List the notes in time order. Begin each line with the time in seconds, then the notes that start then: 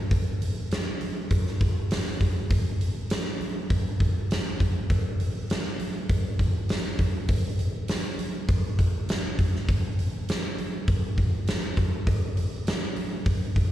0.11 kick, open hi-hat
0.42 open hi-hat
0.71 snare, open hi-hat
1.01 open hi-hat
1.31 kick, open hi-hat
1.47 snare
1.61 kick, open hi-hat
1.91 snare, open hi-hat
2.21 kick, open hi-hat
2.50 kick, open hi-hat
2.81 open hi-hat
3.10 snare, open hi-hat
3.41 open hi-hat
3.70 kick, open hi-hat
4.00 kick, open hi-hat
4.31 snare, open hi-hat
4.60 kick, open hi-hat
4.90 kick, open hi-hat
5.20 open hi-hat
5.50 snare, open hi-hat
5.79 open hi-hat
6.09 kick, open hi-hat
6.39 kick, open hi-hat
6.69 snare, open hi-hat
6.99 kick, open hi-hat
7.28 kick, open hi-hat
7.59 open hi-hat
7.88 snare, open hi-hat
8.19 open hi-hat
8.48 kick, open hi-hat
8.79 kick, open hi-hat
9.09 snare, open hi-hat
9.39 kick, open hi-hat
9.56 snare
9.68 kick, open hi-hat
9.99 open hi-hat
10.29 snare, open hi-hat
10.58 open hi-hat
10.88 kick, open hi-hat
11.18 kick, open hi-hat
11.47 snare, open hi-hat
11.77 kick, open hi-hat
12.07 kick, open hi-hat
12.37 open hi-hat
12.67 snare, open hi-hat
12.96 open hi-hat
13.26 kick, open hi-hat
13.56 kick, open hi-hat